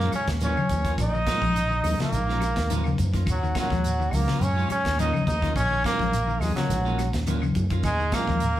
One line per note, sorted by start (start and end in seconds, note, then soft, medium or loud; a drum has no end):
0.00 0.10 F#2 medium
0.00 0.42 A#2 medium
0.00 0.42 D#3 medium
0.00 0.12 F#3 medium
0.00 0.43 G#3 medium
0.00 0.14 A#3 loud
0.00 0.13 A#3 medium
0.00 0.13 C#4 medium
0.00 0.42 C#4 medium
0.00 0.13 F4 medium
0.00 0.14 A#4 medium
0.00 snare soft
0.00 shekere soft
0.12 0.29 F#3 medium
0.12 0.28 C#4 medium
0.12 0.27 C#5 medium
0.12 muted fingered electric bass stroke soft
0.12 muted clean electric guitar stroke soft
0.12 closed hi-hat soft
0.12 claves medium
0.12 shekere medium
0.28 0.54 D#2 medium
0.28 kick medium
0.28 snare medium
0.28 closed hi-hat medium
0.28 shekere soft
0.40 0.57 F#3 medium
0.40 0.56 A#3 medium
0.40 0.56 C#4 medium
0.40 0.96 C#4 medium
0.40 0.56 F4 medium
0.40 closed hi-hat medium
0.40 high conga medium
0.40 shekere medium
0.44 0.96 C#5 medium
0.56 0.72 C#3 medium
0.56 muted clean electric guitar stroke soft
0.56 high conga medium
0.56 claves medium
0.56 shekere soft
0.69 0.95 D#2 medium
0.69 muted clean electric guitar stroke soft
0.69 kick medium
0.69 closed hi-hat medium
0.69 high conga medium
0.69 low conga medium
0.69 shekere medium
0.85 1.02 A#3 soft
0.85 1.02 C#4 soft
0.85 1.01 F4 medium
0.85 kick medium
0.85 snare soft
0.85 closed hi-hat medium
0.85 shekere soft
0.98 1.24 A#1 loud
0.98 1.97 D#4 loud
0.98 kick medium
0.98 closed hi-hat medium
0.98 low conga medium
0.98 claves medium
0.98 shekere medium
1.02 1.97 D#5 loud
1.14 1.29 D#3 medium
1.14 muted clean electric guitar stroke soft
1.14 shekere soft
1.27 1.56 A#2 medium
1.27 1.56 D#3 medium
1.27 1.42 F#3 medium
1.27 1.56 G#3 medium
1.27 1.42 A#3 medium
1.27 1.41 C#4 medium
1.27 1.56 C#4 medium
1.27 1.41 F4 medium
1.27 kick medium
1.27 snare medium
1.27 closed hi-hat medium
1.27 high conga medium
1.27 claves medium
1.27 shekere medium
1.42 1.80 A#1 medium
1.42 1.58 F3 medium
1.42 muted clean electric guitar stroke soft
1.42 kick medium
1.42 shekere soft
1.56 closed hi-hat medium
1.56 shekere medium
1.70 1.86 D#3 medium
1.70 muted clean electric guitar stroke medium
1.70 shekere soft
1.84 1.98 D#2 medium
1.84 2.00 A#2 medium
1.84 2.00 D#3 medium
1.84 2.00 G#3 medium
1.84 2.00 C#4 medium
1.84 muted clean electric guitar stroke soft
1.84 open hi-hat medium
1.84 high conga medium
1.84 low conga medium
1.84 claves medium
1.84 shekere medium
1.99 2.15 C#3 medium
1.99 2.13 A#3 soft
1.99 2.96 A#3 medium
1.99 2.13 C#4 soft
1.99 2.13 F4 medium
1.99 2.96 A#4 medium
1.99 muted fingered electric bass stroke soft
1.99 snare medium
1.99 closed hi-hat medium
1.99 shekere soft
2.12 2.52 A#1 loud
2.12 2.71 A#2 medium
2.12 2.71 D#3 medium
2.12 2.71 G#3 medium
2.12 2.71 D#4 medium
2.12 muted clean electric guitar stroke soft
2.12 closed hi-hat medium
2.12 shekere medium
2.29 2.42 F#3 medium
2.29 2.42 A#3 medium
2.29 2.42 C#4 medium
2.29 2.42 F4 medium
2.29 snare soft
2.29 shekere soft
2.40 2.57 F#3 medium
2.40 muted clean electric guitar stroke soft
2.40 snare soft
2.40 closed hi-hat soft
2.40 claves medium
2.40 shekere medium
2.56 2.94 D#2 medium
2.56 kick medium
2.56 snare medium
2.56 closed hi-hat medium
2.56 shekere soft
2.70 2.79 D#3 medium
2.70 2.85 F#3 medium
2.70 2.85 A#3 medium
2.70 2.85 C#4 medium
2.70 2.85 F4 medium
2.70 closed hi-hat medium
2.70 high conga medium
2.70 shekere medium
2.84 3.01 C#3 medium
2.84 muted clean electric guitar stroke soft
2.84 high conga medium
2.84 claves medium
2.84 shekere soft
2.98 3.27 F#2 medium
2.98 muted clean electric guitar stroke soft
2.98 kick medium
2.98 closed hi-hat medium
2.98 low conga medium
2.98 shekere medium
3.13 3.21 D#3 medium
3.13 3.31 A#3 soft
3.13 3.30 C#4 soft
3.13 3.30 F4 medium
3.13 kick medium
3.13 snare soft
3.13 closed hi-hat medium
3.13 shekere soft
3.26 3.53 D#2 loud
3.26 kick medium
3.26 closed hi-hat medium
3.26 low conga medium
3.26 claves medium
3.26 shekere medium
3.31 3.56 F#3 medium
3.31 3.55 F#4 medium
3.43 3.59 D#3 medium
3.43 muted clean electric guitar stroke soft
3.43 shekere soft
3.55 3.84 A#2 medium
3.55 3.85 D#3 medium
3.55 3.71 F#3 medium
3.55 3.84 G#3 medium
3.55 3.85 A#3 medium
3.55 3.71 A#3 medium
3.55 3.71 C#4 medium
3.55 3.71 F4 medium
3.55 4.16 F#4 medium
3.55 kick medium
3.55 snare medium
3.55 closed hi-hat medium
3.55 high conga medium
3.55 claves medium
3.55 shekere medium
3.59 4.16 F#3 medium
3.70 4.08 D#2 medium
3.70 3.87 F3 medium
3.70 muted clean electric guitar stroke soft
3.70 kick medium
3.70 snare soft
3.70 shekere soft
3.84 closed hi-hat medium
3.84 shekere medium
4.00 4.15 D#3 medium
4.00 muted clean electric guitar stroke soft
4.00 shekere soft
4.11 4.26 C#2 medium
4.11 4.29 A#2 medium
4.11 4.29 D#3 medium
4.11 4.28 G#3 medium
4.11 4.44 A#3 medium
4.11 4.29 C#4 medium
4.11 4.45 A#4 medium
4.11 muted clean electric guitar stroke soft
4.11 open hi-hat medium
4.11 high conga medium
4.11 low conga medium
4.11 claves medium
4.11 shekere medium
4.28 4.44 C#3 medium
4.28 4.41 A#3 soft
4.28 4.41 C#4 soft
4.28 4.41 F4 soft
4.28 snare medium
4.28 shekere soft
4.40 4.67 F#2 medium
4.40 5.00 A#2 medium
4.40 5.00 D#3 medium
4.40 5.01 G#3 medium
4.40 5.00 C#4 medium
4.40 4.71 C#4 medium
4.40 4.71 C#5 medium
4.40 muted clean electric guitar stroke soft
4.40 closed hi-hat medium
4.40 shekere medium
4.57 4.69 F#3 medium
4.57 4.69 C#4 medium
4.57 4.69 F4 medium
4.57 muted clean electric guitar stroke medium
4.57 shekere soft
4.69 4.86 F#3 medium
4.69 4.97 C#4 loud
4.69 4.97 C#5 medium
4.69 muted fingered electric bass stroke soft
4.69 muted clean electric guitar stroke soft
4.69 closed hi-hat soft
4.69 claves medium
4.69 shekere medium
4.85 5.11 D#2 loud
4.85 kick medium
4.85 snare medium
4.85 closed hi-hat soft
4.85 shekere soft
4.98 5.07 D#3 medium
4.98 5.13 F#3 medium
4.98 5.13 A#3 medium
4.98 5.13 C#4 medium
4.98 5.26 D#4 medium
4.98 5.12 F4 medium
4.98 5.26 D#5 medium
4.98 closed hi-hat medium
4.98 high conga medium
4.98 shekere medium
5.13 5.29 C#3 medium
5.13 muted clean electric guitar stroke soft
5.13 high conga medium
5.13 claves medium
5.13 shekere soft
5.27 5.53 D#2 medium
5.27 5.54 D#4 medium
5.27 5.55 D#5 medium
5.27 muted clean electric guitar stroke soft
5.27 kick medium
5.27 closed hi-hat soft
5.27 low conga medium
5.27 shekere medium
5.42 5.50 D#3 medium
5.42 5.59 A#3 soft
5.42 5.59 C#4 medium
5.42 5.59 F4 medium
5.42 kick medium
5.42 snare soft
5.42 closed hi-hat medium
5.42 shekere soft
5.56 5.82 A#1 loud
5.56 5.82 C#4 loud
5.56 5.84 C#5 medium
5.56 kick medium
5.56 closed hi-hat medium
5.56 claves medium
5.56 shekere medium
5.71 5.86 D#3 medium
5.71 muted clean electric guitar stroke soft
5.71 shekere soft
5.84 6.13 A#2 medium
5.84 6.13 D#3 medium
5.84 6.00 F#3 medium
5.84 6.13 G#3 medium
5.84 5.99 A#3 medium
5.84 6.43 A#3 medium
5.84 6.13 C#4 medium
5.84 5.99 C#4 medium
5.84 5.99 F4 medium
5.84 6.45 A#4 medium
5.84 kick medium
5.84 snare medium
5.84 closed hi-hat medium
5.84 high conga medium
5.84 claves medium
5.84 shekere medium
5.99 6.37 A#1 medium
5.99 6.15 F3 medium
5.99 muted clean electric guitar stroke soft
5.99 kick medium
5.99 snare soft
5.99 high conga medium
5.99 shekere soft
6.13 closed hi-hat medium
6.13 shekere medium
6.28 6.43 D#3 medium
6.28 muted clean electric guitar stroke soft
6.28 shekere soft
6.40 6.55 D#2 medium
6.40 6.56 A#2 medium
6.40 6.56 D#3 medium
6.40 6.56 G#3 medium
6.40 6.55 G#3 medium
6.40 6.56 C#4 medium
6.40 6.57 G#4 medium
6.40 muted clean electric guitar stroke soft
6.40 snare soft
6.40 open hi-hat medium
6.40 high conga medium
6.40 low conga medium
6.40 claves medium
6.40 shekere medium
6.56 6.72 C#3 medium
6.56 7.09 F#3 medium
6.56 6.69 A#3 soft
6.56 6.69 C#4 soft
6.56 6.69 F4 medium
6.56 7.10 F#4 medium
6.56 muted fingered electric bass stroke soft
6.56 snare medium
6.56 closed hi-hat soft
6.56 shekere soft
6.69 7.09 A#1 loud
6.69 7.28 A#2 medium
6.69 7.28 D#3 medium
6.69 7.28 G#3 medium
6.69 7.28 C#4 medium
6.69 muted clean electric guitar stroke soft
6.69 snare soft
6.69 closed hi-hat medium
6.69 low conga medium
6.69 shekere loud
6.85 6.98 F#3 medium
6.85 6.98 A#3 medium
6.85 6.98 C#4 medium
6.85 6.98 F4 medium
6.85 shekere soft
6.98 7.15 F#3 medium
6.98 muted clean electric guitar stroke soft
6.98 snare soft
6.98 closed hi-hat medium
6.98 claves medium
6.98 shekere medium
7.13 7.51 D#2 medium
7.13 kick medium
7.13 snare medium
7.13 closed hi-hat medium
7.13 shekere soft
7.27 7.36 D#3 medium
7.27 7.42 F#3 medium
7.27 7.42 A#3 medium
7.27 7.42 C#4 medium
7.27 7.42 F4 medium
7.27 closed hi-hat medium
7.27 high conga medium
7.27 shekere medium
7.42 7.58 C#3 medium
7.42 muted clean electric guitar stroke soft
7.42 high conga medium
7.42 claves medium
7.42 shekere soft
7.55 7.84 F#2 medium
7.55 muted clean electric guitar stroke soft
7.55 kick medium
7.55 closed hi-hat medium
7.55 low conga medium
7.55 shekere medium
7.70 7.79 D#3 medium
7.70 7.88 A#3 soft
7.70 7.88 C#4 medium
7.70 7.87 F4 medium
7.70 kick medium
7.70 closed hi-hat medium
7.70 shekere soft
7.83 8.10 D#2 loud
7.83 8.16 G#3 loud
7.83 8.15 G#4 medium
7.83 kick medium
7.83 closed hi-hat medium
7.83 low conga medium
7.83 claves medium
7.83 shekere medium
8.00 8.15 D#3 medium
8.00 muted clean electric guitar stroke soft
8.00 shekere soft
8.11 8.42 A#2 medium
8.11 8.41 D#3 medium
8.11 8.28 F#3 medium
8.11 8.41 G#3 medium
8.11 8.27 A#3 medium
8.11 8.60 A#3 loud
8.11 8.42 C#4 medium
8.11 8.26 F4 medium
8.11 8.60 A#4 medium
8.11 muted clean electric guitar stroke medium
8.11 kick medium
8.11 snare medium
8.11 closed hi-hat medium
8.11 high conga medium
8.11 claves medium
8.11 shekere medium
8.27 8.60 D#2 medium
8.27 8.44 F3 medium
8.27 muted clean electric guitar stroke soft
8.27 kick medium
8.27 snare soft
8.27 shekere soft
8.40 closed hi-hat medium
8.40 shekere medium
8.56 muted clean electric guitar stroke soft
8.56 shekere soft